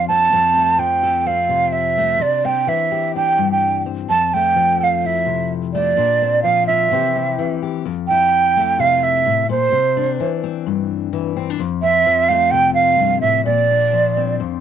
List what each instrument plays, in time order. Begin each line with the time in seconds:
Already playing: steel-string acoustic guitar F2 F3 D4 F4
0.08 steel-string acoustic guitar C4, flute A5
0.33 steel-string acoustic guitar F2 C4
0.56 steel-string acoustic guitar A3
0.79 steel-string acoustic guitar F3, flute G5
1.03 steel-string acoustic guitar A4
1.26 steel-string acoustic guitar C4, flute F5
1.49 steel-string acoustic guitar C3
1.72 flute E5
1.98 steel-string acoustic guitar A3
2.20 steel-string acoustic guitar C3 D4, flute D5
2.45 steel-string acoustic guitar C4, flute G5
2.67 steel-string acoustic guitar E3, flute E5
2.91 steel-string acoustic guitar G4
3.16 steel-string acoustic guitar D4, flute G5
3.38 steel-string acoustic guitar G2
3.51 flute G5
3.86 steel-string acoustic guitar C4
4.09 steel-string acoustic guitar F2, flute A5, muted steel-string acoustic guitar stroke
4.34 steel-string acoustic guitar A3, flute G5
4.56 steel-string acoustic guitar F3
4.81 steel-string acoustic guitar A4, flute F5
5.04 steel-string acoustic guitar E4, flute E5
5.26 steel-string acoustic guitar C3
5.73 steel-string acoustic guitar A3, flute D5
5.97 steel-string acoustic guitar A#2 D4
6.22 steel-string acoustic guitar C4
6.42 steel-string acoustic guitar F3, flute F5
6.67 steel-string acoustic guitar F4, flute E5
6.91 steel-string acoustic guitar C3 E3 C4 E4 G4
7.16 steel-string acoustic guitar C4
7.38 steel-string acoustic guitar E3
7.62 steel-string acoustic guitar G4
7.86 steel-string acoustic guitar F2
8.08 steel-string acoustic guitar E4, flute G5
8.57 steel-string acoustic guitar A3
8.79 steel-string acoustic guitar C3, flute F5
9.03 flute E5
9.26 steel-string acoustic guitar A2
9.49 steel-string acoustic guitar A#2, flute C5
9.72 steel-string acoustic guitar C3
9.97 steel-string acoustic guitar D4
10.20 steel-string acoustic guitar E3
10.44 steel-string acoustic guitar C4
10.66 steel-string acoustic guitar G2
11.13 steel-string acoustic guitar E3
11.36 steel-string acoustic guitar C4
11.50 steel-string acoustic guitar D4
11.59 steel-string acoustic guitar F2
11.82 steel-string acoustic guitar C4, flute E5
12.06 steel-string acoustic guitar F3
12.29 steel-string acoustic guitar A3, flute F5
12.51 steel-string acoustic guitar C3, flute G5
12.74 flute F5
12.99 steel-string acoustic guitar G2
13.21 steel-string acoustic guitar A2, flute E5
13.45 steel-string acoustic guitar A#2, flute D5
13.71 steel-string acoustic guitar D4
13.93 steel-string acoustic guitar F3
14.17 steel-string acoustic guitar C4
14.40 steel-string acoustic guitar F2